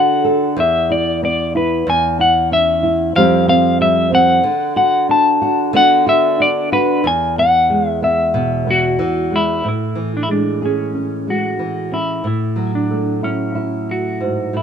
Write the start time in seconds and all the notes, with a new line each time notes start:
Already playing: D3 F#4 A4 F#5
0.24 A4
0.57 E2 E5
0.90 E4 D5
1.23 B3 D5
1.55 E4 B4
1.87 E2 G#5
2.19 E4 F#5
2.52 C#4 E5
2.83 E4
3.16 F2 F3 G3 C4 G4 F5
3.48 C4 F5
3.80 G3 E5
4.12 C4 F#5
4.44 D3
4.76 F#4 F#5
5.09 D4 A5
5.42 F#4
5.73 D3 B3 D4 F#4 F#5
6.06 F#4 E5
6.40 D4 D5
6.72 F#4 B4
7.04 E2 G#5
7.38 B3 F#5
7.70 G#3
7.88 E5
8.02 B3 E5
8.34 B2
8.67 B3 F#4
8.99 E3
9.31 G#3
9.36 E4
9.64 A2
9.69 E4
9.95 E3
10.17 D4
10.23 E4
10.28 G#3 D4
10.62 C#4 G#4
10.94 C#4
11.27 G#3 F#4
11.59 E3
11.92 C#4 E4
12.24 A2 E4
12.56 F#3
12.75 D4
12.91 A3
13.23 C#4 E4
13.55 E4
13.91 F#4
14.20 G#2
14.53 A2 E4